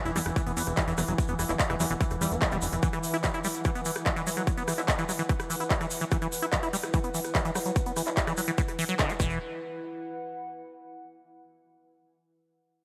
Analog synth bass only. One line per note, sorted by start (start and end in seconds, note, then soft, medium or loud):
0.05 0.11 E1 medium
0.16 0.21 E2 loud
0.26 0.32 E1 medium
0.46 0.52 E1 medium
0.57 0.62 E2 loud
0.67 0.73 E1 medium
0.88 0.93 E1 medium
0.98 1.04 E1 loud
1.08 1.14 E1 medium
1.29 1.34 E1 medium
1.39 1.45 E1 loud
1.49 1.55 E1 medium
1.70 1.75 E1 medium
1.80 1.86 E2 loud
1.90 1.96 E1 medium
2.11 2.17 E1 medium
2.21 2.27 E2 loud
2.31 2.37 E1 loud
2.52 2.58 E1 medium
2.62 2.68 E1 loud
2.73 2.78 E1 medium
9.20 9.39 E1 loud